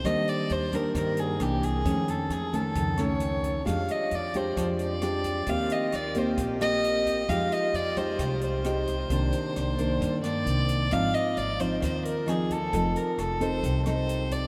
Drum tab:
HH |xxxxxxxx|xxxxxxxx|xxxxxxxx|xxxxxxxx|
SD |r---r-r-|--r--r--|r---r-r-|--r--r--|
BD |o--oo--o|o--oo--o|o--oo--o|o--oo--o|

HH |xxxxxxxx|xxxxxxxx|xxxxxxxx|xxxxxxxx|
SD |r---r-r-|--r--r--|r---r-r-|--r--r--|
BD |o--oo--o|o--oo--o|o--oo--o|o--oo--o|